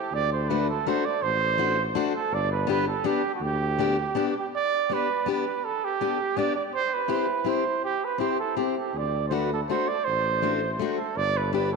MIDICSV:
0, 0, Header, 1, 4, 480
1, 0, Start_track
1, 0, Key_signature, 1, "major"
1, 0, Tempo, 368098
1, 151, Time_signature, 3, 2, 24, 8
1, 15336, End_track
2, 0, Start_track
2, 0, Title_t, "Trumpet"
2, 0, Program_c, 0, 56
2, 0, Note_on_c, 0, 67, 74
2, 187, Note_on_c, 0, 74, 97
2, 206, Note_off_c, 0, 67, 0
2, 414, Note_off_c, 0, 74, 0
2, 422, Note_on_c, 0, 72, 70
2, 638, Note_on_c, 0, 71, 78
2, 657, Note_off_c, 0, 72, 0
2, 884, Note_off_c, 0, 71, 0
2, 902, Note_on_c, 0, 69, 76
2, 1151, Note_on_c, 0, 72, 82
2, 1171, Note_off_c, 0, 69, 0
2, 1372, Note_on_c, 0, 74, 88
2, 1392, Note_off_c, 0, 72, 0
2, 1598, Note_on_c, 0, 72, 111
2, 1618, Note_off_c, 0, 74, 0
2, 2441, Note_off_c, 0, 72, 0
2, 2808, Note_on_c, 0, 69, 86
2, 3055, Note_on_c, 0, 74, 100
2, 3075, Note_off_c, 0, 69, 0
2, 3277, Note_off_c, 0, 74, 0
2, 3285, Note_on_c, 0, 71, 74
2, 3493, Note_off_c, 0, 71, 0
2, 3523, Note_on_c, 0, 71, 86
2, 3738, Note_off_c, 0, 71, 0
2, 3757, Note_on_c, 0, 69, 74
2, 3992, Note_on_c, 0, 67, 86
2, 4012, Note_off_c, 0, 69, 0
2, 4342, Note_off_c, 0, 67, 0
2, 4365, Note_on_c, 0, 66, 56
2, 4479, Note_on_c, 0, 67, 87
2, 4499, Note_off_c, 0, 66, 0
2, 5684, Note_off_c, 0, 67, 0
2, 5718, Note_on_c, 0, 67, 64
2, 5814, Note_off_c, 0, 67, 0
2, 5944, Note_on_c, 0, 74, 110
2, 6437, Note_on_c, 0, 71, 91
2, 6457, Note_off_c, 0, 74, 0
2, 6894, Note_off_c, 0, 71, 0
2, 6914, Note_on_c, 0, 71, 75
2, 7365, Note_on_c, 0, 69, 89
2, 7385, Note_off_c, 0, 71, 0
2, 7621, Note_on_c, 0, 67, 85
2, 7641, Note_off_c, 0, 69, 0
2, 8318, Note_on_c, 0, 74, 92
2, 8338, Note_off_c, 0, 67, 0
2, 8544, Note_off_c, 0, 74, 0
2, 8552, Note_on_c, 0, 74, 75
2, 8653, Note_off_c, 0, 74, 0
2, 8796, Note_on_c, 0, 72, 104
2, 9051, Note_on_c, 0, 71, 83
2, 9071, Note_off_c, 0, 72, 0
2, 9765, Note_on_c, 0, 72, 78
2, 9785, Note_off_c, 0, 71, 0
2, 10222, Note_off_c, 0, 72, 0
2, 10229, Note_on_c, 0, 67, 91
2, 10491, Note_on_c, 0, 71, 77
2, 10510, Note_off_c, 0, 67, 0
2, 10691, Note_on_c, 0, 72, 84
2, 10710, Note_off_c, 0, 71, 0
2, 10942, Note_off_c, 0, 72, 0
2, 10948, Note_on_c, 0, 69, 75
2, 11170, Note_off_c, 0, 69, 0
2, 11178, Note_on_c, 0, 67, 67
2, 11414, Note_off_c, 0, 67, 0
2, 11444, Note_on_c, 0, 67, 69
2, 11705, Note_on_c, 0, 74, 92
2, 11725, Note_off_c, 0, 67, 0
2, 12103, Note_off_c, 0, 74, 0
2, 12111, Note_on_c, 0, 72, 61
2, 12183, Note_on_c, 0, 71, 68
2, 12202, Note_off_c, 0, 72, 0
2, 12419, Note_off_c, 0, 71, 0
2, 12434, Note_on_c, 0, 69, 72
2, 12533, Note_off_c, 0, 69, 0
2, 12647, Note_on_c, 0, 72, 80
2, 12886, Note_on_c, 0, 74, 85
2, 12906, Note_off_c, 0, 72, 0
2, 13099, Note_on_c, 0, 72, 98
2, 13118, Note_off_c, 0, 74, 0
2, 13960, Note_off_c, 0, 72, 0
2, 14310, Note_on_c, 0, 69, 79
2, 14565, Note_on_c, 0, 74, 107
2, 14585, Note_off_c, 0, 69, 0
2, 14829, Note_on_c, 0, 71, 82
2, 14848, Note_off_c, 0, 74, 0
2, 15032, Note_off_c, 0, 71, 0
2, 15040, Note_on_c, 0, 71, 69
2, 15263, Note_off_c, 0, 71, 0
2, 15287, Note_on_c, 0, 69, 66
2, 15336, Note_off_c, 0, 69, 0
2, 15336, End_track
3, 0, Start_track
3, 0, Title_t, "Steel-string acoustic guitar"
3, 0, Program_c, 1, 25
3, 654, Note_on_c, 1, 57, 52
3, 660, Note_on_c, 1, 62, 50
3, 666, Note_on_c, 1, 66, 61
3, 868, Note_off_c, 1, 57, 0
3, 871, Note_off_c, 1, 62, 0
3, 872, Note_off_c, 1, 66, 0
3, 1128, Note_on_c, 1, 57, 57
3, 1138, Note_on_c, 1, 62, 56
3, 1147, Note_on_c, 1, 66, 62
3, 1346, Note_off_c, 1, 57, 0
3, 1347, Note_off_c, 1, 62, 0
3, 1354, Note_off_c, 1, 66, 0
3, 2060, Note_on_c, 1, 57, 53
3, 2069, Note_on_c, 1, 62, 52
3, 2077, Note_on_c, 1, 66, 69
3, 2287, Note_off_c, 1, 57, 0
3, 2292, Note_off_c, 1, 62, 0
3, 2294, Note_off_c, 1, 66, 0
3, 2544, Note_on_c, 1, 57, 69
3, 2547, Note_on_c, 1, 62, 66
3, 2560, Note_on_c, 1, 66, 81
3, 2764, Note_off_c, 1, 57, 0
3, 2765, Note_off_c, 1, 62, 0
3, 2772, Note_off_c, 1, 66, 0
3, 3482, Note_on_c, 1, 59, 68
3, 3497, Note_on_c, 1, 62, 55
3, 3516, Note_on_c, 1, 67, 68
3, 3709, Note_off_c, 1, 59, 0
3, 3716, Note_off_c, 1, 62, 0
3, 3726, Note_off_c, 1, 67, 0
3, 3968, Note_on_c, 1, 59, 68
3, 3975, Note_on_c, 1, 62, 57
3, 3991, Note_on_c, 1, 67, 64
3, 4189, Note_off_c, 1, 59, 0
3, 4191, Note_off_c, 1, 62, 0
3, 4200, Note_off_c, 1, 67, 0
3, 4938, Note_on_c, 1, 59, 59
3, 4948, Note_on_c, 1, 62, 47
3, 4961, Note_on_c, 1, 67, 62
3, 5156, Note_off_c, 1, 59, 0
3, 5161, Note_off_c, 1, 62, 0
3, 5167, Note_off_c, 1, 67, 0
3, 5411, Note_on_c, 1, 59, 66
3, 5423, Note_on_c, 1, 62, 60
3, 5434, Note_on_c, 1, 67, 76
3, 5642, Note_off_c, 1, 59, 0
3, 5644, Note_off_c, 1, 62, 0
3, 5652, Note_off_c, 1, 67, 0
3, 6386, Note_on_c, 1, 59, 49
3, 6406, Note_on_c, 1, 62, 42
3, 6412, Note_on_c, 1, 67, 55
3, 6609, Note_off_c, 1, 59, 0
3, 6620, Note_off_c, 1, 62, 0
3, 6623, Note_off_c, 1, 67, 0
3, 6860, Note_on_c, 1, 59, 55
3, 6874, Note_on_c, 1, 62, 50
3, 6889, Note_on_c, 1, 67, 60
3, 7084, Note_off_c, 1, 59, 0
3, 7091, Note_off_c, 1, 62, 0
3, 7099, Note_off_c, 1, 67, 0
3, 7837, Note_on_c, 1, 59, 54
3, 7845, Note_on_c, 1, 62, 50
3, 7849, Note_on_c, 1, 67, 55
3, 8049, Note_off_c, 1, 59, 0
3, 8049, Note_off_c, 1, 62, 0
3, 8054, Note_off_c, 1, 67, 0
3, 8302, Note_on_c, 1, 59, 58
3, 8314, Note_on_c, 1, 62, 51
3, 8326, Note_on_c, 1, 67, 61
3, 8516, Note_off_c, 1, 59, 0
3, 8522, Note_off_c, 1, 62, 0
3, 8528, Note_off_c, 1, 67, 0
3, 9234, Note_on_c, 1, 60, 49
3, 9240, Note_on_c, 1, 64, 52
3, 9250, Note_on_c, 1, 67, 62
3, 9461, Note_off_c, 1, 60, 0
3, 9465, Note_off_c, 1, 64, 0
3, 9470, Note_off_c, 1, 67, 0
3, 9709, Note_on_c, 1, 60, 52
3, 9723, Note_on_c, 1, 64, 47
3, 9731, Note_on_c, 1, 67, 66
3, 9941, Note_off_c, 1, 60, 0
3, 9947, Note_off_c, 1, 64, 0
3, 9952, Note_off_c, 1, 67, 0
3, 10670, Note_on_c, 1, 60, 53
3, 10693, Note_on_c, 1, 64, 45
3, 10705, Note_on_c, 1, 67, 51
3, 10907, Note_off_c, 1, 60, 0
3, 10918, Note_off_c, 1, 64, 0
3, 10924, Note_off_c, 1, 67, 0
3, 11171, Note_on_c, 1, 60, 49
3, 11176, Note_on_c, 1, 64, 47
3, 11182, Note_on_c, 1, 67, 57
3, 11404, Note_off_c, 1, 60, 0
3, 11407, Note_off_c, 1, 64, 0
3, 11407, Note_off_c, 1, 67, 0
3, 12140, Note_on_c, 1, 57, 50
3, 12150, Note_on_c, 1, 62, 53
3, 12157, Note_on_c, 1, 66, 57
3, 12373, Note_off_c, 1, 57, 0
3, 12378, Note_off_c, 1, 62, 0
3, 12380, Note_off_c, 1, 66, 0
3, 12643, Note_on_c, 1, 57, 52
3, 12647, Note_on_c, 1, 62, 51
3, 12662, Note_on_c, 1, 66, 56
3, 12862, Note_off_c, 1, 57, 0
3, 12863, Note_off_c, 1, 62, 0
3, 12871, Note_off_c, 1, 66, 0
3, 13592, Note_on_c, 1, 57, 55
3, 13600, Note_on_c, 1, 62, 53
3, 13606, Note_on_c, 1, 66, 61
3, 13818, Note_off_c, 1, 57, 0
3, 13822, Note_off_c, 1, 62, 0
3, 13826, Note_off_c, 1, 66, 0
3, 14076, Note_on_c, 1, 57, 68
3, 14090, Note_on_c, 1, 62, 59
3, 14108, Note_on_c, 1, 66, 75
3, 14298, Note_off_c, 1, 57, 0
3, 14306, Note_off_c, 1, 62, 0
3, 14314, Note_off_c, 1, 66, 0
3, 15032, Note_on_c, 1, 59, 52
3, 15035, Note_on_c, 1, 62, 43
3, 15054, Note_on_c, 1, 67, 61
3, 15253, Note_off_c, 1, 59, 0
3, 15253, Note_off_c, 1, 62, 0
3, 15263, Note_off_c, 1, 67, 0
3, 15336, End_track
4, 0, Start_track
4, 0, Title_t, "Tuba"
4, 0, Program_c, 2, 58
4, 155, Note_on_c, 2, 38, 77
4, 1095, Note_off_c, 2, 38, 0
4, 1614, Note_on_c, 2, 33, 78
4, 2535, Note_off_c, 2, 33, 0
4, 3026, Note_on_c, 2, 31, 91
4, 3951, Note_off_c, 2, 31, 0
4, 4439, Note_on_c, 2, 38, 78
4, 5391, Note_off_c, 2, 38, 0
4, 11663, Note_on_c, 2, 38, 75
4, 12607, Note_off_c, 2, 38, 0
4, 13137, Note_on_c, 2, 33, 68
4, 14066, Note_off_c, 2, 33, 0
4, 14550, Note_on_c, 2, 31, 92
4, 15336, Note_off_c, 2, 31, 0
4, 15336, End_track
0, 0, End_of_file